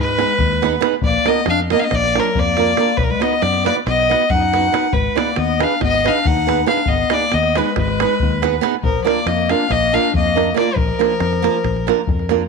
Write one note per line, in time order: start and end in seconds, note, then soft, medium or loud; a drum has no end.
0.00 0.23 G#2 loud
0.00 0.80 G#3 medium
0.00 0.80 B4 loud
0.08 davul high soft
0.19 0.32 B3 medium
0.19 0.32 D#4 medium
0.19 0.32 G#4 medium
0.19 0.33 B4 medium
0.19 davul high medium
0.39 0.77 D#2 medium
0.39 davul low medium
0.52 davul high soft
0.62 0.75 B3 medium
0.62 0.75 D#4 medium
0.62 0.75 G#4 medium
0.62 0.76 B4 medium
0.62 davul high medium
0.73 davul high soft
0.81 0.94 B3 medium
0.81 0.94 D#4 medium
0.81 0.94 G#4 medium
0.81 0.95 B4 medium
0.81 davul high medium
0.93 davul high soft
1.02 1.17 A#1 medium
1.02 1.30 A#3 medium
1.02 1.29 D5 medium
1.02 davul low loud
1.26 1.39 A#3 medium
1.26 1.48 B3 medium
1.26 1.39 D4 medium
1.26 1.39 F4 medium
1.26 1.40 A#4 medium
1.26 1.47 D#5 loud
1.26 davul high medium
1.36 davul high soft
1.46 1.74 F2 medium
1.46 1.60 F5 medium
1.46 davul high medium
1.50 1.60 D4 medium
1.59 davul high soft
1.70 1.84 A#3 medium
1.70 1.83 D4 soft
1.70 1.84 F4 soft
1.70 1.84 A#4 medium
1.70 1.81 D#5 medium
1.70 davul high medium
1.76 1.81 B3 medium
1.76 1.88 D4 medium
1.76 1.86 F5 medium
1.82 1.96 D#5 loud
1.82 davul high soft
1.86 1.97 B3 medium
1.91 2.18 A#1 loud
1.91 2.21 D5 loud
1.91 davul high medium
1.91 davul low medium
1.95 2.21 A#3 medium
2.04 davul high soft
2.15 2.40 F#3 medium
2.15 2.28 A#3 medium
2.15 2.28 D4 medium
2.15 2.28 F4 medium
2.15 2.29 A#4 medium
2.15 davul high medium
2.20 2.40 A#4 medium
2.35 2.73 F2 medium
2.35 3.00 A#3 medium
2.35 2.98 D5 loud
2.35 davul low medium
2.46 davul high soft
2.57 2.70 A#3 medium
2.57 2.70 D4 soft
2.57 2.71 F4 medium
2.57 2.71 A#4 medium
2.57 davul high medium
2.77 2.90 A#3 medium
2.77 2.90 D4 medium
2.77 2.91 F4 medium
2.77 2.91 A#4 medium
2.77 davul high medium
2.87 davul high soft
2.97 3.13 B1 medium
2.97 3.06 F#3 medium
2.97 3.05 B4 medium
2.97 davul low medium
3.03 3.12 F#3 medium
3.03 3.12 A#4 medium
3.10 3.24 G#3 medium
3.10 3.23 B4 medium
3.10 davul high soft
3.20 3.33 B3 medium
3.20 3.44 B3 medium
3.20 3.34 D#4 medium
3.20 3.34 F#4 medium
3.20 3.34 B4 medium
3.20 3.43 D#5 medium
3.20 davul high medium
3.32 davul high soft
3.42 3.69 F#2 medium
3.42 3.65 B3 medium
3.42 3.65 D5 medium
3.42 davul high medium
3.54 davul high soft
3.64 3.75 A#3 medium
3.64 3.78 B3 medium
3.64 3.78 D#4 medium
3.64 3.78 F#4 medium
3.64 3.79 B4 medium
3.64 3.75 D5 medium
3.64 davul high medium
3.77 davul high soft
3.87 4.13 B1 loud
3.87 4.35 B3 medium
3.87 4.31 D#5 loud
3.87 davul high medium
4.00 davul high soft
4.09 4.22 B3 medium
4.09 4.23 D#4 soft
4.09 4.23 F#4 medium
4.09 4.23 B4 medium
4.09 davul high medium
4.21 davul high soft
4.29 4.68 F#2 loud
4.29 4.94 F#5 loud
4.29 davul low medium
4.34 4.95 D#4 medium
4.42 davul high soft
4.53 4.65 B3 medium
4.53 4.66 D#4 medium
4.53 4.66 F#4 medium
4.53 4.66 B4 medium
4.53 davul high medium
4.65 davul high soft
4.72 4.85 B3 medium
4.72 4.85 D#4 medium
4.72 4.85 F#4 medium
4.72 4.86 B4 medium
4.72 davul high medium
4.84 davul high soft
4.93 5.07 G#1 medium
4.93 5.18 G#3 medium
4.93 5.18 B4 medium
4.93 davul low loud
5.15 5.39 A#3 medium
5.15 5.29 B3 medium
5.15 5.29 D#4 medium
5.15 5.29 G#4 medium
5.15 5.29 B4 medium
5.15 5.39 D5 medium
5.15 davul high medium
5.27 davul high soft
5.36 5.64 D#2 medium
5.36 5.64 B3 medium
5.36 5.64 D#5 medium
5.36 davul high medium
5.59 5.73 B3 soft
5.59 5.82 D4 medium
5.59 5.73 D#4 soft
5.59 5.73 G#4 medium
5.59 5.73 B4 medium
5.59 5.82 F5 medium
5.59 davul high medium
5.71 davul high soft
5.81 6.08 G#1 loud
5.81 6.08 B3 medium
5.81 6.09 D#5 loud
5.81 davul high medium
5.81 davul low medium
5.94 davul high soft
6.04 6.17 B3 medium
6.04 6.29 D4 medium
6.04 6.18 D#4 medium
6.04 6.18 G#4 medium
6.04 6.18 B4 medium
6.04 6.28 F5 medium
6.04 davul high medium
6.25 6.63 D#2 medium
6.25 6.69 D#4 medium
6.25 6.67 F#5 loud
6.25 davul low loud
6.37 davul high soft
6.47 6.60 B3 medium
6.47 6.60 D#4 medium
6.47 6.60 G#4 soft
6.47 6.61 B4 medium
6.47 davul high medium
6.59 davul high soft
6.66 6.79 B3 medium
6.66 6.89 D4 medium
6.66 6.80 D#4 medium
6.66 6.80 G#4 medium
6.66 6.80 B4 medium
6.66 6.89 F5 medium
6.66 davul high medium
6.77 davul high soft
6.86 7.02 G#1 loud
6.86 7.16 B3 medium
6.86 7.14 D#5 medium
6.86 davul low loud
7.10 7.24 B3 medium
7.10 7.24 D#4 medium
7.10 7.24 G#4 medium
7.10 7.24 B4 medium
7.10 7.35 D5 loud
7.10 davul high medium
7.15 7.34 A#3 medium
7.22 davul high soft
7.32 7.60 D#2 medium
7.32 7.59 B3 medium
7.32 7.58 D#5 medium
7.32 davul high medium
7.43 davul high soft
7.55 7.77 G#3 medium
7.55 7.69 B3 medium
7.55 7.69 D#4 medium
7.55 7.69 G#4 medium
7.55 7.77 B4 medium
7.55 7.70 B4 medium
7.55 davul high medium
7.66 davul high soft
7.76 8.04 G#1 loud
7.76 8.60 G#3 medium
7.76 8.60 B4 medium
7.76 davul high medium
7.76 davul low medium
7.88 davul high soft
8.00 8.13 B3 medium
8.00 8.13 D#4 medium
8.00 8.13 G#4 medium
8.00 8.14 B4 medium
8.00 davul high medium
8.20 8.59 D#2 medium
8.20 davul low medium
8.32 davul high soft
8.42 8.55 B3 medium
8.42 8.55 D#4 medium
8.42 8.55 G#4 medium
8.42 8.56 B4 medium
8.42 davul high medium
8.54 davul high soft
8.61 8.74 B3 medium
8.61 8.75 D#4 medium
8.61 8.75 G#4 medium
8.61 8.75 B4 medium
8.61 davul high medium
8.74 davul high soft
8.82 8.98 A#1 medium
8.82 9.04 F3 medium
8.82 9.04 A#4 medium
8.82 davul low loud
9.04 9.18 A#3 medium
9.04 9.18 D4 medium
9.04 9.18 F4 medium
9.04 9.19 A#4 medium
9.04 9.29 D5 medium
9.04 davul high medium
9.08 9.27 A#3 medium
9.17 davul high soft
9.26 9.53 F2 medium
9.26 9.52 A#3 medium
9.26 9.52 D#5 medium
9.26 davul high medium
9.38 davul high soft
9.49 9.63 A#3 soft
9.49 9.63 D4 medium
9.49 9.71 D4 medium
9.49 9.63 F4 medium
9.49 9.63 A#4 medium
9.49 9.73 F5 medium
9.49 davul high medium
9.60 davul high soft
9.69 9.97 A#1 loud
9.69 9.95 A#3 medium
9.69 9.95 D#5 loud
9.69 davul high medium
9.69 davul low soft
9.83 davul high soft
9.93 10.06 A#3 medium
9.93 10.14 D4 medium
9.93 10.06 D4 medium
9.93 10.07 F4 medium
9.93 10.07 A#4 medium
9.93 10.14 F5 medium
10.14 10.51 F2 medium
10.14 10.54 A#3 medium
10.14 10.54 D#5 medium
10.14 davul low medium
10.26 davul high soft
10.35 10.48 A#3 medium
10.35 10.48 D4 medium
10.35 10.49 F4 soft
10.35 10.49 A#4 medium
10.35 davul high medium
10.47 davul high soft
10.54 10.68 A#3 medium
10.54 10.77 A#3 medium
10.54 10.68 D4 medium
10.54 10.68 F4 medium
10.54 10.69 A#4 medium
10.54 10.77 D5 medium
10.54 davul high medium
10.67 davul high soft
10.76 10.90 A#1 medium
10.76 12.29 F3 medium
10.76 12.29 A#4 medium
10.76 davul low loud
10.89 davul high soft
10.99 11.12 A#3 medium
10.99 11.12 D4 medium
10.99 11.12 F4 medium
10.99 11.13 A#4 medium
10.99 davul high medium
11.11 davul high soft
11.20 11.46 F2 medium
11.20 davul high medium
11.33 davul high soft
11.42 11.55 A#3 medium
11.42 11.56 D4 medium
11.42 11.56 F4 soft
11.42 11.56 A#4 medium
11.42 davul high medium
11.54 davul high soft
11.64 11.90 A#1 medium
11.64 davul high medium
11.64 davul low soft
11.76 davul high soft
11.87 12.00 A#3 medium
11.87 12.00 D4 medium
11.87 12.00 F4 medium
11.87 12.01 A#4 medium
11.87 davul high medium
11.98 davul high soft
12.07 12.45 F2 medium
12.07 davul low medium
12.19 davul high soft
12.29 12.42 A#3 medium
12.29 12.42 D4 medium
12.29 12.42 F4 medium
12.29 12.42 A#4 medium
12.29 davul high medium
12.41 davul high soft